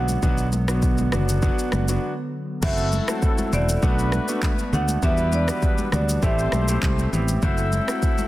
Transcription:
Already playing: B1 D3 F#3 B3 D4 F#4 F#5
0.08 high conga, shaker
0.22 B1 F#3 B3 D4 F#4, kick, low conga, shaker
0.38 shaker
0.52 high conga, shaker
0.68 F#3 B3 D4 F#4, cross-stick, shaker
0.82 kick, shaker
0.98 high conga, shaker
1.12 F#1 F#3 B3 D4 F#4, cross-stick, high conga, low conga, shaker
1.29 shaker
1.42 F#3 B3 D4 F#4, kick, shaker
1.59 shaker
1.72 F#1, cross-stick, high conga, shaker
1.88 F#3 B3 D4 F#4, shaker
2.62 F#1 F#3 A3 C4 E4 F#4 A4 E5, kick, crash, low conga, shaker
2.77 shaker
2.92 high conga, shaker
3.08 A3 C4 E4 F#4, cross-stick, shaker
3.22 kick, shaker
3.38 high conga, shaker
3.52 E1 A3 C4 E4 F#4 D5, high conga, low conga, shaker
3.69 shaker
3.82 B1 A3 B3 D4 F#4 B4, kick, shaker
3.99 shaker
4.12 cross-stick, high conga, shaker
4.28 A3 B3 D4 F#4, shaker
4.42 kick, cross-stick, clap, high conga, low conga, shaker
4.59 shaker
4.72 D2 A3 B3 D4 F#4 F#5, high conga, low conga, shaker
4.88 high conga, shaker
5.02 E2 E3 G3 B3 D4 E4 F#4 G4 B4 E5, kick, low conga, shaker
5.17 shaker
5.32 D5, high conga, shaker
5.48 G3 B3 D4 F#4, cross-stick, shaker
5.62 kick, shaker
5.78 high conga, shaker
5.92 D2 G3 B3 D4 F#4 D5, cross-stick, high conga, low conga, shaker
6.09 shaker
6.22 A1 A3 C4 E4 G4 A4 C5 E5, kick, shaker
6.39 shaker
6.52 B1, cross-stick, high conga, shaker
6.68 A3 C4 E4 G4, shaker
6.82 C2, kick, clap, high conga, low conga, shaker
6.99 shaker
7.13 A1 B3 C4 E4 G4, high conga, low conga, shaker
7.28 high conga, shaker
7.42 F#1 F#3 A3 C4 E4 F#4 A4 C5 E5, kick, low conga, shaker
7.58 shaker
7.72 high conga, shaker
7.88 A3 C4 E4 F#4, cross-stick, shaker
8.02 kick, shaker
8.18 high conga, shaker

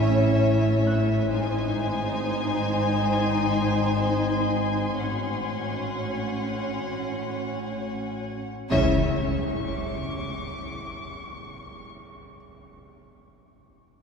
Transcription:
Already playing: A1 A2 C#4 E4 C#5 E5 A5 A6
0.87 F#6
1.30 G#1 G#2 C4 D#4 C5 G#5 C6
3.15 G#6
4.98 A1 A2 C#4 F#4 C#5 F#5
8.71 C#2 C#3 C#4 E4 C#5 E5 C#6, impact
9.64 D6
11.31 C#6

